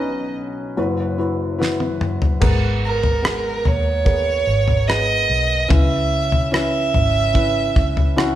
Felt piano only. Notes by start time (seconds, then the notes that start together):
Already playing: B1 B2 C#4 D#4 B4
0.77 F#1 F#2 E4 F#4 B4
1.18 E4 F#4 B4
1.58 E4 F#4 B4
2.40 G#2 B3 G#4 A#4
3.22 B3 G#4 A#4
4.04 B3 G#4 A#4
4.88 B3 G#4 B4
5.68 C#3 C#4 E4 B4
6.51 C#4 E4 B4
7.33 C#4 E4 B4
8.16 C#4 E4 F#4